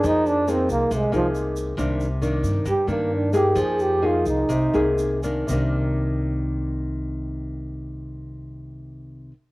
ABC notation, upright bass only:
X:1
M:4/4
L:1/8
Q:1/4=125
K:Cm
V:1 name="Upright bass" clef=bass
F,,3 C,, C,, C,,3 | C,,3 G,, G,, G,,3 | F,,3 C,, C,, C,,3 | C,,8- |
C,,8 |]